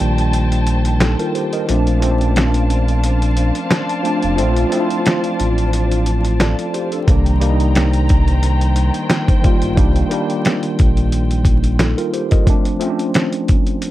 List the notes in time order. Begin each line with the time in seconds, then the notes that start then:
Already playing: D#3 G3 A#3 D4 F4 C5 G5 A5
0.00 A#1, closed hi-hat
0.18 closed hi-hat
0.33 closed hi-hat
0.52 closed hi-hat
0.67 closed hi-hat
0.85 closed hi-hat
1.00 D#4 A4, snare, closed hi-hat
1.19 F4 A#4, closed hi-hat
1.35 G4 C5, closed hi-hat
1.53 A#4 D#5, closed hi-hat
1.67 A#1 F3 A3 C4 D4 C5 F5 A5, closed hi-hat
1.87 closed hi-hat
2.00 F3 A3 C4 C#4, closed hi-hat
2.11 D4
2.21 closed hi-hat
2.36 snare, closed hi-hat
2.54 closed hi-hat
2.70 closed hi-hat
2.88 closed hi-hat
3.04 closed hi-hat
3.22 closed hi-hat
3.37 closed hi-hat
3.55 closed hi-hat
3.71 snare, closed hi-hat
3.89 closed hi-hat
4.02 F3 A3 C4, closed hi-hat
4.06 D4
4.22 F1, closed hi-hat
4.36 A#1 F3 A3 C4, closed hi-hat
4.40 F4
4.57 closed hi-hat
4.70 F3 A3 C4, closed hi-hat
4.74 E4
4.80 F4
4.91 closed hi-hat
5.06 snare, closed hi-hat
5.24 closed hi-hat
5.40 A1, closed hi-hat
5.58 closed hi-hat
5.73 closed hi-hat
5.91 closed hi-hat
6.06 closed hi-hat
6.25 closed hi-hat
6.40 A4 D5, snare, closed hi-hat
6.59 closed hi-hat
6.74 G4 C5, closed hi-hat
6.92 D4 A4, closed hi-hat
7.07 C2 D#3 G3 A#3 D4 C5 G5 A#5, kick, closed hi-hat
7.26 closed hi-hat
7.39 D#3 G3 A#3 D4, closed hi-hat
7.50 D#4
7.60 closed hi-hat
7.75 snare, closed hi-hat
7.93 closed hi-hat
8.09 kick, closed hi-hat
8.28 closed hi-hat
8.43 closed hi-hat
8.61 closed hi-hat
8.76 closed hi-hat
8.94 closed hi-hat
9.10 snare, closed hi-hat
9.28 kick, closed hi-hat
9.42 D#3 G3 A#3 F4, kick, closed hi-hat
9.62 G1, closed hi-hat
9.75 C2 D#3 G3 A#3 D4, kick, closed hi-hat
9.96 closed hi-hat
10.10 D#3 G3 A#3 D4, closed hi-hat
10.30 closed hi-hat
10.45 snare, closed hi-hat
10.63 closed hi-hat
10.79 A#1, kick, closed hi-hat
10.97 closed hi-hat
11.12 closed hi-hat
11.31 closed hi-hat
11.45 kick, closed hi-hat
11.64 closed hi-hat
11.79 D#4 A4, snare, closed hi-hat
11.98 F4 A#4, closed hi-hat
12.13 G4 C5, closed hi-hat
12.31 A#4 D#5, kick, closed hi-hat
12.46 F3 A3 C4 D4, kick, closed hi-hat
12.65 closed hi-hat
12.79 F3 A3 C4 C#4, closed hi-hat
12.89 D4
12.99 closed hi-hat
13.14 snare, closed hi-hat
13.33 closed hi-hat
13.48 kick, closed hi-hat
13.67 closed hi-hat
13.82 closed hi-hat